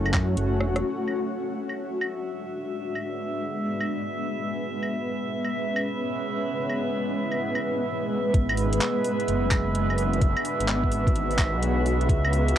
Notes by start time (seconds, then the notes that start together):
Already playing: F#1 A3 C#4 E4 F#4 C#5
0.06 claves
0.14 F#2, kick, clap, claves
0.37 F#1, closed hi-hat
0.61 E1, cross-stick
0.76 cross-stick, closed hi-hat
0.83 G#3 E5
1.00 D4
1.07 B4, claves
1.35 B3
1.70 claves
2.02 claves
2.95 claves
3.81 claves
4.74 C#4
4.83 claves
5.45 claves
5.76 claves
5.81 E4
6.69 claves
7.32 claves
7.55 claves
8.34 G#1 E5, kick, closed hi-hat
8.49 claves
8.57 open hi-hat
8.73 closed hi-hat
8.81 clap, closed hi-hat
9.02 D4, open hi-hat
9.20 closed hi-hat
9.28 F#1, closed hi-hat
9.49 F#4, kick, clap, open hi-hat, claves
9.75 closed hi-hat
9.90 claves
9.98 open hi-hat
10.13 closed hi-hat
10.21 kick, closed hi-hat
10.37 claves
10.45 open hi-hat
10.60 G#1, closed hi-hat
10.68 clap, closed hi-hat
10.84 kick
10.92 open hi-hat
11.07 kick, closed hi-hat
11.15 closed hi-hat
11.31 open hi-hat
11.39 kick, clap, open hi-hat, claves
11.53 B1
11.62 closed hi-hat
11.86 open hi-hat
12.01 closed hi-hat
12.09 C#2, kick, closed hi-hat
12.24 claves
12.33 open hi-hat
12.48 closed hi-hat